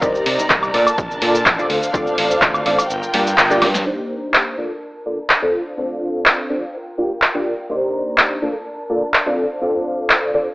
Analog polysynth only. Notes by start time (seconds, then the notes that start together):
0.01 C4 D#4 G4 A#4 D5
0.74 A#3 D4 F4 A4 D5
1.22 A#3 D4 F4 A4 D5
1.58 C4 D4 F4 A4 D5
1.93 C4 D4 F4 A4 D5
2.66 C4 D4 F4 A4 D5
3.14 A#3 D4 F4 G4 D5
3.50 A#3 D4 F4 G4 D5
3.85 A#3 D4 D#4 G4 C5
4.58 A#3 D4 F4 A4 D5
5.06 A#3 D4 F4 A4 D5
5.42 C4 D4 F4 A4 D5
5.77 C4 D4 F4 A4 D5
6.50 C4 D4 F4 A4 D5
6.98 A#3 D4 F4 G4 D5
7.34 A#3 D4 F4 G4 D5
7.70 A#3 D4 D#4 G4 C5
8.42 A#3 D4 F4 A4 D5
8.90 A#3 D4 F4 A4 D5
9.26 C4 D4 F4 A4 D5
9.61 C4 D4 F4 A4 D5
10.34 C4 D4 F4 A4 D5